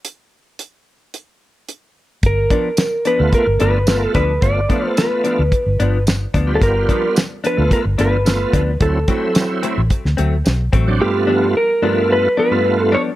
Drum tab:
HH |x---x---x---x---|x-x-x-x-x-x-x-x-|x-x-x-x-x-x-x-x-|x-x-x-x-x-x-x-x-|
TB |----------------|----x-------x---|----x-------x---|----x-------x---|
SD |----------------|----o-------o---|----o-------o---|----o-------o---|
BD |----------------|o-o-----o-----o-|o-o-----o-----o-|o-o-----o-----o-|

HH |x-x-x-x-x-x-x-x-|----------------|
TB |----x-------x---|----------------|
SD |----o----o--o---|----------------|
BD |o-o-----o-----o-|----------------|